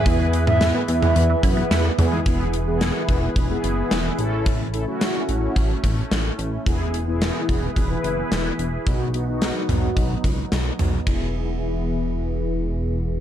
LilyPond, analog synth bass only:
\new Staff \with { instrumentName = "Analog synth bass" } { \clef bass \time 4/4 \key e \major \tempo 4 = 109 e,4~ e,16 r16 e,8 e,8 fis,8 e,8 e,8 | e,,4~ e,,16 r16 e,,8 e,,8 fis,,8 e,,8 a,,8~ | a,,4~ a,,16 r16 a,,8 a,,8 a,,8 a,,8 a,,8 | e,,4~ e,,16 r16 e,,8 e,,8 fis,,8 e,,8 e,,8 |
b,,4~ b,,16 r16 b,,8 b,,8 cis,8 b,,8 b,,8 | e,,1 | }